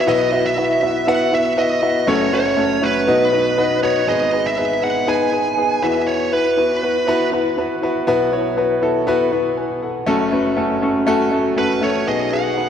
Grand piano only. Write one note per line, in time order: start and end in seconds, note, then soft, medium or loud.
0.07 2.03 B1 medium
0.07 2.03 B2 medium
0.07 0.29 B3 loud
0.07 0.29 E4 medium
0.07 0.29 F#4 medium
0.07 0.30 B4 medium
0.07 0.30 E5 loud
0.32 0.54 B3 medium
0.32 0.54 E4 medium
0.32 0.54 F#4 medium
0.32 0.54 B4 medium
0.32 0.55 E5 medium
0.57 0.79 B3 medium
0.57 0.79 E4 medium
0.57 0.79 F#4 medium
0.57 0.79 B4 medium
0.57 0.80 E5 medium
0.82 1.04 B3 medium
0.82 1.04 E4 medium
0.82 1.04 F#4 medium
0.82 1.04 B4 medium
0.82 1.05 E5 medium
1.07 1.29 B3 loud
1.07 1.29 E4 medium
1.07 1.29 F#4 loud
1.07 1.30 B4 medium
1.07 1.30 E5 loud
1.32 1.54 B3 medium
1.32 1.54 E4 medium
1.32 1.54 F#4 medium
1.32 1.54 B4 medium
1.32 1.55 E5 medium
1.57 1.79 B3 medium
1.57 1.79 E4 medium
1.57 1.79 F#4 medium
1.57 1.79 B4 medium
1.57 1.80 E5 medium
1.82 2.04 B3 medium
1.82 2.04 E4 medium
1.82 2.04 F#4 medium
1.82 2.04 B4 medium
1.82 2.05 E5 medium
2.07 3.03 F#1 medium
2.07 3.03 F#2 medium
2.07 2.29 A3 loud
2.07 2.29 C#4 loud
2.07 2.29 F#4 medium
2.07 2.29 A4 medium
2.07 2.30 C#5 loud
2.32 2.54 A3 medium
2.32 2.54 C#4 medium
2.32 2.54 F#4 medium
2.32 2.54 A4 medium
2.32 2.55 C#5 medium
2.57 2.79 A3 medium
2.57 2.79 C#4 medium
2.57 2.79 F#4 medium
2.57 2.79 A4 medium
2.57 2.79 C#5 medium
2.82 3.04 A3 medium
2.82 3.04 C#4 medium
2.82 3.04 F#4 medium
2.82 3.04 A4 medium
2.82 3.05 C#5 medium
3.07 4.03 B1 medium
3.07 4.03 B2 medium
3.07 3.29 B3 loud
3.07 3.29 D#4 medium
3.07 3.29 F#4 medium
3.07 3.30 B4 medium
3.07 3.30 D#5 loud
3.32 3.54 B3 medium
3.32 3.54 D#4 medium
3.32 3.54 F#4 medium
3.32 3.55 B4 medium
3.32 3.55 D#5 medium
3.58 3.79 B3 medium
3.58 3.79 D#4 medium
3.58 3.80 F#4 medium
3.58 3.80 B4 medium
3.58 3.80 D#5 loud
3.82 4.04 B3 medium
3.82 4.04 D#4 medium
3.82 4.05 F#4 medium
3.82 4.05 B4 medium
3.82 4.05 D#5 loud
4.07 5.78 G#1 medium
4.07 5.78 G#2 medium
4.07 4.29 B3 medium
4.07 4.29 D#4 medium
4.07 4.30 G#4 medium
4.07 4.30 B4 loud
4.32 4.54 B3 medium
4.32 4.54 D#4 medium
4.32 4.55 G#4 medium
4.32 4.55 B4 medium
4.57 4.79 B3 medium
4.57 4.79 D#4 medium
4.57 4.79 G#4 medium
4.57 4.80 B4 medium
4.82 5.04 B3 medium
4.82 5.04 D#4 medium
4.82 5.05 G#4 medium
4.82 5.05 B4 medium
5.07 5.29 B3 medium
5.07 5.29 D#4 medium
5.07 5.29 G#4 medium
5.07 5.30 B4 loud
5.32 5.54 B3 medium
5.32 5.54 D#4 medium
5.32 5.54 G#4 medium
5.32 5.55 B4 medium
5.57 5.79 B3 medium
5.57 5.79 D#4 medium
5.57 5.80 G#4 medium
5.57 5.80 B4 medium
5.82 7.78 E2 medium
5.82 7.78 E3 medium
5.82 6.26 B3 medium
5.82 6.26 E4 medium
5.82 6.27 F#4 medium
5.82 6.27 B4 medium
6.32 6.54 B3 medium
6.32 6.54 E4 medium
6.32 6.54 F#4 medium
6.32 6.55 B4 medium
6.57 6.79 B3 medium
6.57 6.79 E4 medium
6.57 6.79 F#4 medium
6.57 6.80 B4 medium
6.83 7.04 B3 medium
6.83 7.05 E4 medium
6.83 7.05 F#4 medium
6.83 7.05 B4 medium
7.07 7.29 B3 loud
7.07 7.29 E4 loud
7.07 7.29 F#4 loud
7.07 7.30 B4 loud
7.32 7.54 B3 medium
7.32 7.54 E4 medium
7.32 7.55 F#4 medium
7.32 7.55 B4 loud
7.57 7.79 B3 medium
7.57 7.79 E4 medium
7.57 7.80 F#4 medium
7.57 7.80 B4 medium
7.82 8.04 B3 medium
7.82 8.04 E4 medium
7.82 8.05 F#4 medium
7.82 8.05 B4 loud
8.07 10.03 B1 medium
8.07 10.03 B2 medium
8.07 8.29 B3 loud
8.07 8.29 E4 loud
8.07 8.29 F#4 loud
8.07 8.30 B4 loud
8.32 8.54 B3 medium
8.32 8.54 E4 medium
8.32 8.54 F#4 medium
8.32 8.55 C#5 medium
8.57 8.79 B3 medium
8.57 8.79 E4 medium
8.57 8.79 F#4 medium
8.57 8.80 B4 loud
8.81 9.04 B3 medium
8.81 9.04 E4 medium
8.81 9.04 F#4 medium
8.81 9.04 A4 medium
9.07 9.29 B3 loud
9.07 9.29 E4 loud
9.07 9.29 F#4 loud
9.07 9.30 B4 loud
9.32 9.54 B3 medium
9.32 9.54 E4 medium
9.32 9.54 F#4 medium
9.32 9.55 B4 medium
9.57 9.81 B4 medium
9.57 9.81 G#5 medium
9.82 10.06 A4 medium
9.82 10.30 F#5 medium
10.06 12.03 F#1 medium
10.06 12.03 F#2 medium
10.06 10.29 A3 loud
10.06 10.29 C#4 loud
10.06 10.29 F#4 loud
10.06 10.29 A4 loud
10.32 10.54 A3 medium
10.32 10.54 C#4 medium
10.32 10.54 F#4 medium
10.32 10.55 B4 medium
10.57 10.79 A3 medium
10.57 10.79 C#4 medium
10.57 10.79 F#4 medium
10.57 10.79 A4 loud
10.82 11.04 A3 medium
10.82 11.04 C#4 medium
10.82 11.04 F#4 medium
10.82 11.05 A4 medium
11.07 11.29 A3 loud
11.07 11.29 C#4 loud
11.07 11.29 F#4 loud
11.07 11.29 A4 loud
11.31 11.54 A3 medium
11.31 11.54 C#4 medium
11.31 11.54 F#4 medium
11.31 11.54 A4 loud
11.56 11.79 A3 medium
11.56 11.79 C#4 medium
11.56 11.79 F#4 medium
11.56 11.79 A4 medium
11.81 12.04 A3 medium
11.81 12.04 C#4 medium
11.81 12.04 F#4 medium
11.81 12.04 A4 loud
12.07 12.69 B1 medium
12.07 12.69 B2 medium
12.07 12.29 B3 medium
12.07 12.29 D#4 medium
12.07 12.29 F#4 medium
12.07 12.30 G#4 medium
12.32 12.54 B3 medium
12.32 12.54 D#4 medium
12.32 12.54 F#4 medium
12.32 12.54 G#4 medium
12.56 12.69 B3 medium
12.56 12.69 D#4 medium
12.56 12.69 F#4 medium
12.56 12.69 B4 medium